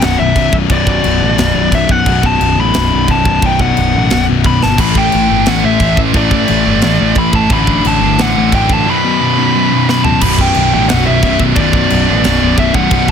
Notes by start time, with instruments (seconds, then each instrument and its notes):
Already playing: distorted electric guitar B1 F#2 B2
0.02 picked electric bass B0, distorted electric guitar B1 F#2 B2, lead electric guitar F#5, snare, china
0.19 picked electric bass B0, distorted electric guitar B1 F#2 B2, lead electric guitar E5
0.36 picked electric bass B0, distorted electric guitar B1 F#2 B2, kick, china
0.53 picked electric bass B0, distorted electric guitar B1 F#2 B2, kick
0.69 picked electric bass B0, distorted electric guitar B1 F#2 B2, lead electric guitar D5, kick, china
0.86 distorted electric guitar B1 F#2 B2, kick
1.03 picked electric bass B0, distorted electric guitar B1 F#2 B2, china
1.21 picked electric bass A1, distorted electric guitar B1 F#2 B2
1.38 picked electric bass B0, distorted electric guitar B1 F#2 B2, snare, china
1.55 picked electric bass B0, distorted electric guitar B1 F#2 B2
1.72 picked electric bass B0, distorted electric guitar B1 F#2 B2, lead electric guitar E5, kick, china
1.88 picked electric bass B0, distorted electric guitar B1 F#2 B2, lead electric guitar F#5, kick
2.06 picked electric bass B0, distorted electric guitar B1 F#2 B2, kick, china
2.22 distorted electric guitar B1 F#2 B2, kick
2.26 lead electric guitar A5
2.39 picked electric bass B0, distorted electric guitar B1 F#2 B2, china
2.56 picked electric bass A1, distorted electric guitar B1 F#2 B2
2.61 lead electric guitar B5
2.74 picked electric bass B0, distorted electric guitar B1 F#2 B2, snare, china
2.90 picked electric bass B0, distorted electric guitar B1 F#2 B2
3.07 picked electric bass B0, distorted electric guitar B1 F#2 B2, kick, china
3.11 lead electric guitar A5
3.25 picked electric bass B0, distorted electric guitar B1 F#2 B2, kick
3.42 picked electric bass B0, distorted electric guitar B1 F#2 B2, lead electric guitar G5, kick, china
3.59 distorted electric guitar B1 F#2 B2, lead electric guitar F#5, kick
3.77 picked electric bass B0, distorted electric guitar B1 F#2 B2, china
3.95 picked electric bass A1, distorted electric guitar B1 F#2 B2
4.10 picked electric bass B0, distorted electric guitar B1 F#2 B2, snare, china
4.29 picked electric bass B0, distorted electric guitar B1 F#2 B2
4.44 picked electric bass B0, distorted electric guitar B1 F#2 B2, lead electric guitar B5, kick, china
4.62 picked electric bass G1, distorted electric guitar B1 F#2 B2, lead electric guitar A5, snare
4.78 picked electric bass A1, distorted electric guitar A2 E3 A3, lead electric guitar B5, kick, china, splash, crash
4.95 distorted electric guitar A2 E3 A3, lead electric guitar G5, kick
5.12 picked electric bass A1, distorted electric guitar A2 E3 A3, china
5.30 picked electric bass G1, distorted electric guitar A2 E3 A3
5.46 picked electric bass A1, distorted electric guitar A2 E3 A3, lead electric guitar F#5, snare, china
5.64 picked electric bass A1, distorted electric guitar A2 E3 A3, lead electric guitar E5
5.80 picked electric bass A1, distorted electric guitar A2 E3 A3, kick, china
5.97 picked electric bass A1, distorted electric guitar A2 E3 A3, kick
6.13 picked electric bass A1, distorted electric guitar A2 E3 A3, lead electric guitar D5, kick, china
6.31 distorted electric guitar A2 E3 A3, kick
6.48 picked electric bass A1, distorted electric guitar A2 E3 A3, china
6.65 picked electric bass G1, distorted electric guitar A2 E3 A3
6.81 picked electric bass A1, distorted electric guitar A2 E3 A3, snare, china
7.00 picked electric bass A1, distorted electric guitar A2 E3 A3
7.15 picked electric bass A1, distorted electric guitar A2 E3 A3, lead electric guitar B5, kick, china
7.33 picked electric bass A1, distorted electric guitar A2 E3 A3, lead electric guitar A5, kick
7.48 picked electric bass A1, distorted electric guitar D2 A2 D3, kick, china
7.53 lead electric guitar B5
7.66 distorted electric guitar D2 A2 D3, kick
7.82 picked electric bass A1, distorted electric guitar D2 A2 D3, china
7.87 lead electric guitar A5
7.99 picked electric bass G1, distorted electric guitar D2 A2 D3
8.17 picked electric bass A1, distorted electric guitar D2 A2 D3, snare, china
8.21 lead electric guitar F#5
8.36 picked electric bass A1, distorted electric guitar D2 A2 D3
8.52 picked electric bass A1, distorted electric guitar D2 A2 D3, lead electric guitar G5, kick, china
8.69 picked electric bass A1, distorted electric guitar D2 A2 D3, lead electric guitar A5, kick
8.87 distorted electric guitar B1 F#2 B2, lead electric guitar B5
9.04 distorted electric guitar B1 F#2 B2
9.21 distorted electric guitar B1 F#2 B2
9.38 distorted electric guitar B1 F#2 B2
9.55 distorted electric guitar B1 F#2 B2
9.72 distorted electric guitar B1 F#2 B2
9.89 distorted electric guitar B1 F#2 B2, lead electric guitar B5, snare
10.05 distorted electric guitar B1 F#2 B2, lead electric guitar A5, floor tom
10.21 picked electric bass B0, distorted electric guitar B1 F#2 B2, lead electric guitar B5, kick, crash, china
10.38 distorted electric guitar B1 F#2 B2, lead electric guitar G5, kick
10.55 picked electric bass B0, distorted electric guitar B1 F#2 B2, china
10.74 picked electric bass A1, distorted electric guitar B1 F#2 B2, lead electric guitar G5
10.89 picked electric bass B0, distorted electric guitar B1 F#2 B2, lead electric guitar F#5, snare, china
11.06 picked electric bass B0, distorted electric guitar B1 F#2 B2, lead electric guitar E5
11.23 picked electric bass B0, distorted electric guitar B1 F#2 B2, kick, china
11.40 picked electric bass B0, distorted electric guitar B1 F#2 B2, kick
11.56 picked electric bass B0, distorted electric guitar B1 F#2 B2, lead electric guitar D5, kick, china
11.73 distorted electric guitar B1 F#2 B2, kick
11.90 picked electric bass B0, distorted electric guitar B1 F#2 B2, china
12.08 picked electric bass A1, distorted electric guitar B1 F#2 B2
12.24 picked electric bass B0, distorted electric guitar B1 F#2 B2, snare, china
12.41 picked electric bass B0, distorted electric guitar B1 F#2 B2
12.58 picked electric bass B0, distorted electric guitar B1 F#2 B2, lead electric guitar E5, kick, china
12.74 picked electric bass B0, distorted electric guitar B1 F#2 B2, lead electric guitar F#5, kick
12.91 picked electric bass B0, distorted electric guitar B1 F#2 B2, kick, china
13.08 kick